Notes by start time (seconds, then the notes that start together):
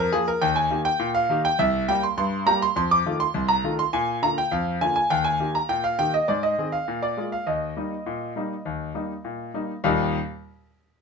0.00 A#4
0.12 F3 A#3 F4 G#4
0.28 A#4
0.41 D#2 G5
0.56 G#5
0.71 D#3 A#3 G4
0.85 G5
0.99 A#2
1.15 F5
1.30 D#3 A#3 G4
1.45 G5
1.59 C2 E5
1.88 G3 A#3 G4 G5
2.03 C6
2.17 G2 C6
2.46 G3 A#3 G4 A#5
2.62 C6
2.76 F2 C6
2.91 D6
3.05 D#3 A3 F4
3.20 C6
3.34 C2
3.48 A#5
3.64 D#3 A3 F4
3.79 C6
3.93 A#2 G#5
4.22 D3 A#3 F4 A#5
4.38 G5
4.51 F2 F5
4.81 D3 A#3 F4 G#5
4.96 G#5
5.10 D#2 G5
5.24 G#5
5.40 D#3 A#3 G4
5.55 A#5
5.69 A#2 G5
5.84 F5
5.99 D#3 A#3 G4 G5
6.14 D#5
6.28 G#2 D5
6.43 D#5
6.58 D#3 C4 G#4
6.72 F5
6.88 A#2
7.03 D5
7.17 G#3 A#3 F4
7.32 F5
7.47 D#2 D#5
7.77 G3 A#3 D#4
8.06 A#2
8.36 G3 A#3 D#4
8.65 D#2
8.95 G3 A#3 D#4
9.25 A#2
9.54 G3 A#3 D#4
9.84 D#2 A#2 G3 A#3 D#4 G4